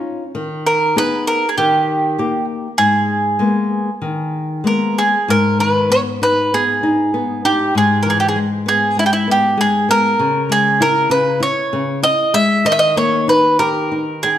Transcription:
Already playing: C#4 D#4 F4
0.35 D#3
0.66 A#4
0.96 B3 D#4 G#4 B4
1.27 A#4
1.49 G#4
1.58 D#3 G4
2.18 A#3 D#4 G4
2.78 G#2 G#4
3.39 G#3 A#3 B3
4.02 D#3
4.64 G#3 A#3 B3 A#4
4.98 G#4
5.28 G#2 A#4
5.59 D#3 B4
5.90 B3 C#5
6.22 D#4 B4
6.54 B3 G#4
6.83 D#4
7.14 B3
7.45 D#4 G4
7.75 G#2 G#4
8.03 E3 A#4
8.10 G#4
8.20 G4
8.29 G#4
8.36 G#3
8.66 B3 G#4
8.97 G#3 E4
9.06 G4
9.13 E4
9.28 B3 G4
9.57 G#3 G#4
9.89 B3 A#4
10.19 C#3
10.49 G#3 G#4
10.80 E4 A#4
11.10 C#3 B4
11.40 E4 C#5
11.73 C#3
12.03 E4 D#5
12.34 G#3 E5
12.65 D#3 D#5
12.72 E5
12.79 D#5
12.96 A#3 C#5
13.28 D#4 B4
13.59 G4 A#4
13.92 D#4
14.23 G#4 G5

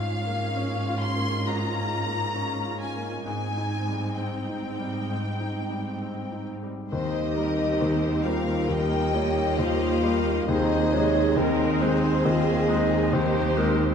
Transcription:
Already playing: G#2 C#4 F4 F5
0.27 A#3
0.57 C#4
0.86 F4
1.02 C6
1.16 A#3
1.47 G#2 A#5
1.75 F4
2.06 A#3
2.35 C#4
2.65 F4
2.80 G#5
2.96 A#3
3.25 G#2 C4 D#4 G#5
3.57 D#4
3.87 G3
4.18 C4 G5
4.49 D#4
4.79 G3
5.10 G#2
5.40 D#4
5.70 G3
6.02 C4
6.32 D#4
6.63 G3
6.91 D#2 D#3 C4 D#4 G4 C5 D#5
7.35 G3 A#3 D#4 A#4
7.79 D#2 D#3 C5
8.23 G3 A#3 D#4 F4 A#4 F5
8.68 D#2 D#3 A#3 D#4 G4 A#4 D#5 G5
9.13 G3 A#3 D#4 F4 C#5
9.58 D#2 D#3 F4 G4 C5 F5
10.03 G3 A#3 D#4 A#4
10.47 D#2 C3 D#3 D#4 G#4 C5 D#5
10.92 C3 G#3 D#4 G#4 C#5
11.36 D#2 D#3 C4 D#4 G#4 A#4 C5 D#5
11.81 G#3 C4 D#4 G#4 C5
12.25 D#2 D#3 F4 G#4 D#5
12.68 G#3 C4 D#4
13.13 D#2 D#3 G4 C5
13.57 G#3 C4 D#4 A#4

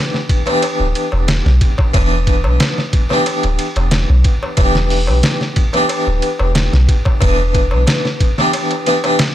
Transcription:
Already playing: E3 B3 D4 G4
0.14 snare, darbuka tek
0.29 kick, ride
0.46 E3 B3 D4 G4, ride, darbuka tek
0.62 ride, darbuka tek
0.80 D1, darbuka tek
0.95 ride
1.12 E1, darbuka tek
1.28 snare, ride, darbuka tek
1.46 B1, snare, darbuka tek
1.61 kick, ride
1.78 kick, darbuka tek
1.94 E1 E3 B3 D4 B4, kick, ride, darbuka tek
2.11 darbuka tek
2.27 kick, ride
2.44 B1, darbuka tek
2.60 snare, ride, darbuka tek
2.78 snare, darbuka tek
2.93 kick, ride
3.09 E3 B3 D4 G4, snare, darbuka tek
3.26 ride, darbuka tek
3.43 D1, ride, darbuka tek
3.59 ride
3.76 E1, ride, darbuka tek
3.91 snare, ride, darbuka tek
4.09 B1, darbuka tek
4.24 kick, ride
4.43 darbuka tek
4.57 E1 E3 B3 D4 G4, kick, ride, darbuka tek
4.75 snare, darbuka tek
4.90 open hi-hat
5.07 B1, darbuka tek
5.23 snare, ride, darbuka tek
5.41 snare, darbuka tek
5.56 kick, ride
5.73 E3 B3 D4 G4, ride, darbuka tek
5.89 ride, darbuka tek
6.07 D1, darbuka tek
6.22 ride
6.39 E1, darbuka tek
6.55 snare, ride, darbuka tek
6.73 B1, snare, darbuka tek
6.89 kick, ride
7.05 kick, darbuka tek
7.21 E1 E3 B3 D4 B4, kick, ride, darbuka tek
7.39 darbuka tek
7.55 kick, ride
7.71 B1, darbuka tek
7.87 snare, ride, darbuka tek
8.05 snare, darbuka tek
8.20 kick, ride
8.38 E3 B3 D4 G4, snare, darbuka tek
8.53 ride, darbuka tek
8.71 ride, darbuka tek
8.86 E3 B3 D4 G4, ride
9.04 E3 B3 D4 G4, ride, darbuka tek
9.19 snare, ride, darbuka tek

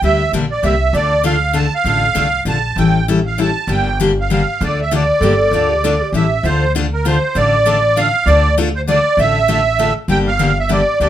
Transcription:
0.02 D2 D3 G3 A#3 D4 G4 E5
0.32 A#1 D3 G3 A#3 D4 G4
0.51 D5
0.63 C2 D3 G3 A#3 D4 G4 E5
0.93 D2 D3 A3 D4 F4 A4 D5
1.23 D3 A3 D4 F4 A4 F5
1.53 D3 A3 D4 F4 A4 A5
1.75 F5
1.84 A1 D3 A3 D4 F4 A4
2.15 C2 D3 A3 D4 F4 A4
2.45 A#1 D3 A3 D4 F4 A4 A5
2.76 A1 E3 G3 C#4 E4 A4 G5
3.08 E3 G3 C#4 E4 A4
3.26 F5
3.38 E3 G3 C#4 E4 A4 A5
3.67 G1 D3 G3 A#3 D4 G4 G5
4.00 D3 G3 A#3 D4 G4
4.20 F5
4.30 D3 G3 A#3 D4 G4 F5
4.61 D2 D3 A3 D4 F4 A4 D5
4.82 E5
4.91 D3 A3 D4 F4 A4 D5
5.21 G1 D3 G3 A#3 D4 G4 A4
5.38 A4
5.51 D2 D3 A3 D4 F4 A4
5.69 G4
5.83 D3 A3 D4 F4 A4
6.02 G4
6.12 A1 E3 G3 C#4 E4 A4 E5
6.43 D2 D3 A3 D4 F4 A4 C5
6.75 D3 A3 D4 F4 A4
6.93 A#4
7.05 D3 A3 D4 F4 A4 C5
7.35 A1 D3 A3 D4 F4 A4 D5
7.66 D3 A3 D4 F4 A4
7.96 D3 A3 D4 F4 A4 F5
8.26 D2 D3 A3 D4 F4 A4 D5
8.58 D3 A3 D4 F4 A4
8.76 C5
8.87 D3 A3 D4 F4 A4 D5
9.17 A1 D3 A3 D4 F4 A4 E5
9.48 D3 A3 D4 F4 A4
9.79 D3 A3 D4 F4 A4
10.08 G1 D3 G3 A#3 D4 G4 G5
10.27 F5
10.39 D3 G3 A#3 D4 G4
10.59 E5
10.69 D3 G3 A#3 D4 G4 D5
11.00 D2 D3 G3 A#3 D4 G4 D5

